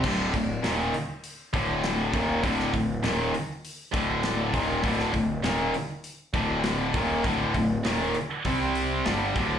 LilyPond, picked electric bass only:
\new Staff \with { instrumentName = "Picked electric bass" } { \clef bass \time 4/4 \key c \mixolydian \tempo 4 = 100 d,,8 d,,8 ees,,8 r4 d,,4 ees,,8 | d,,8 d,,8 ees,,8 r4 d,,4 ees,,8 | d,,8 d,,8 ees,,8 r4 d,,4 ees,,8 | d,,8 d,,8 ees,,8 r8 c,4 g,,8 d,,8 | }